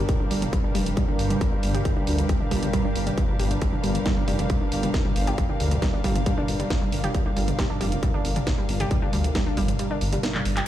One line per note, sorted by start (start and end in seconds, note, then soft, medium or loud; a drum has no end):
0.00 10.68 G2 medium
0.00 10.68 G3 medium
0.00 10.67 D4 medium
0.00 10.68 A#4 medium
0.00 10.68 F5 medium
0.09 0.12 G3 medium
0.09 kick loud
0.09 closed hi-hat medium
0.20 0.28 D4 medium
0.20 mid tom medium
0.31 0.46 G1 loud
0.31 0.39 G3 medium
0.31 open hi-hat loud
0.42 closed hi-hat medium
0.42 mid tom medium
0.53 0.58 G3 loud
0.53 kick loud
0.53 closed hi-hat medium
0.64 0.69 D4 medium
0.64 mid tom medium
0.75 0.90 F1 medium
0.75 0.83 G3 loud
0.75 open hi-hat loud
0.86 closed hi-hat medium
0.86 mid tom medium
0.97 1.00 G3 medium
0.97 kick loud
0.97 closed hi-hat medium
1.08 1.16 D4 medium
1.08 mid tom medium
1.19 1.34 G1 medium
1.19 open hi-hat loud
1.30 1.38 G3 medium
1.30 closed hi-hat medium
1.30 mid tom medium
1.41 kick loud
1.41 closed hi-hat medium
1.52 1.60 G3 medium
1.52 mid tom medium
1.63 1.78 G1 medium
1.63 open hi-hat loud
1.74 1.77 G4 loud
1.74 closed hi-hat medium
1.74 mid tom medium
1.85 1.88 G3 medium
1.85 kick loud
1.85 closed hi-hat medium
1.96 2.04 D4 medium
1.96 mid tom medium
2.07 2.23 D2 medium
2.07 2.15 G3 medium
2.07 open hi-hat loud
2.18 closed hi-hat medium
2.18 mid tom medium
2.29 2.35 G3 loud
2.29 kick loud
2.29 closed hi-hat medium
2.40 2.46 D4 medium
2.40 mid tom medium
2.51 2.67 G1 medium
2.51 2.59 G3 medium
2.51 kick medium
2.51 open hi-hat loud
2.63 closed hi-hat medium
2.63 mid tom medium
2.73 2.77 G3 medium
2.73 kick loud
2.73 closed hi-hat medium
2.85 2.92 D4 medium
2.85 mid tom medium
2.95 3.11 G1 medium
2.95 open hi-hat loud
3.07 3.12 G3 loud
3.07 closed hi-hat medium
3.07 mid tom medium
3.18 kick loud
3.18 closed hi-hat medium
3.29 3.32 F3 medium
3.29 mid tom medium
3.39 3.55 G1 medium
3.39 3.43 G4 medium
3.39 open hi-hat loud
3.51 3.58 G3 medium
3.51 closed hi-hat medium
3.51 mid tom medium
3.62 3.65 G3 medium
3.62 kick loud
3.62 closed hi-hat medium
3.73 3.80 D4 medium
3.73 mid tom loud
3.84 3.99 G1 loud
3.84 3.92 G3 medium
3.84 open hi-hat loud
3.95 closed hi-hat medium
3.95 mid tom medium
4.06 4.11 G3 loud
4.06 kick loud
4.06 snare loud
4.06 closed hi-hat medium
4.17 4.22 D4 medium
4.17 mid tom loud
4.28 4.43 F1 medium
4.28 4.36 G3 loud
4.28 open hi-hat loud
4.39 closed hi-hat medium
4.39 mid tom loud
4.50 4.55 G3 medium
4.50 kick loud
4.50 closed hi-hat medium
4.61 4.69 D4 medium
4.61 mid tom medium
4.72 4.87 G1 medium
4.72 open hi-hat loud
4.83 4.91 G3 medium
4.83 closed hi-hat medium
4.83 mid tom medium
4.94 kick loud
4.94 snare loud
4.94 closed hi-hat medium
5.05 5.13 G3 medium
5.05 mid tom loud
5.16 5.31 G1 medium
5.16 open hi-hat loud
5.27 5.30 G4 loud
5.27 closed hi-hat medium
5.27 mid tom medium
5.38 5.41 G3 medium
5.38 kick loud
5.38 closed hi-hat medium
5.49 5.57 D4 medium
5.49 mid tom loud
5.60 5.75 D2 medium
5.60 5.68 G3 medium
5.60 open hi-hat loud
5.71 closed hi-hat medium
5.71 mid tom loud
5.82 5.88 G3 loud
5.82 kick loud
5.82 snare loud
5.82 closed hi-hat medium
5.93 5.99 D4 medium
5.93 mid tom medium
6.04 6.20 G1 medium
6.04 6.12 G3 loud
6.04 kick medium
6.04 open hi-hat loud
6.15 closed hi-hat medium
6.15 mid tom medium
6.26 6.32 G3 medium
6.26 kick loud
6.26 closed hi-hat medium
6.38 6.45 D4 medium
6.38 mid tom loud
6.48 6.64 G1 loud
6.48 open hi-hat loud
6.60 6.67 G3 medium
6.60 closed hi-hat medium
6.60 mid tom medium
6.70 kick loud
6.70 snare loud
6.70 closed hi-hat medium
6.82 6.89 G3 medium
6.82 mid tom loud
6.92 7.08 G1 loud
6.92 open hi-hat loud
7.04 7.07 G4 loud
7.04 closed hi-hat medium
7.04 mid tom medium
7.14 7.18 G3 medium
7.14 kick loud
7.14 closed hi-hat medium
7.26 7.33 D4 medium
7.26 mid tom medium
7.37 7.52 G1 loud
7.37 7.45 G3 medium
7.37 open hi-hat loud
7.48 closed hi-hat medium
7.48 mid tom medium
7.59 7.64 G3 loud
7.59 kick loud
7.59 snare loud
7.59 closed hi-hat medium
7.70 7.75 D4 medium
7.70 mid tom medium
7.81 7.96 F1 medium
7.81 7.89 G3 medium
7.81 open hi-hat loud
7.92 closed hi-hat medium
7.92 mid tom medium
8.03 8.08 G3 medium
8.03 kick loud
8.03 closed hi-hat medium
8.14 8.22 D4 medium
8.14 mid tom medium
8.25 8.40 G1 medium
8.25 open hi-hat loud
8.36 8.44 G3 medium
8.36 closed hi-hat medium
8.36 mid tom loud
8.47 kick loud
8.47 snare loud
8.47 closed hi-hat medium
8.58 8.66 G3 medium
8.58 mid tom medium
8.69 8.84 G1 medium
8.69 open hi-hat loud
8.80 8.83 G4 loud
8.80 closed hi-hat medium
8.80 mid tom medium
8.91 8.94 G3 medium
8.91 kick loud
8.91 closed hi-hat medium
9.02 9.10 D4 medium
9.02 mid tom medium
9.13 9.28 D2 medium
9.13 9.21 G3 medium
9.13 open hi-hat loud
9.24 closed hi-hat medium
9.24 mid tom medium
9.35 9.40 G3 loud
9.35 kick loud
9.35 snare loud
9.35 closed hi-hat medium
9.46 9.51 D4 medium
9.46 mid tom medium
9.57 9.72 G1 medium
9.57 9.65 G3 loud
9.57 kick medium
9.57 open hi-hat loud
9.68 closed hi-hat medium
9.68 mid tom medium
9.79 9.85 G3 medium
9.79 closed hi-hat medium
9.90 9.98 D4 medium
9.90 mid tom medium
10.01 10.17 G1 loud
10.01 open hi-hat loud
10.13 10.20 G3 medium
10.13 closed hi-hat medium
10.13 mid tom medium
10.23 snare loud
10.23 closed hi-hat medium
10.35 10.42 G3 medium
10.35 clap medium
10.35 mid tom medium
10.45 10.61 G1 loud
10.45 open hi-hat loud
10.57 10.60 G4 loud
10.57 clap loud
10.57 closed hi-hat medium
10.57 mid tom medium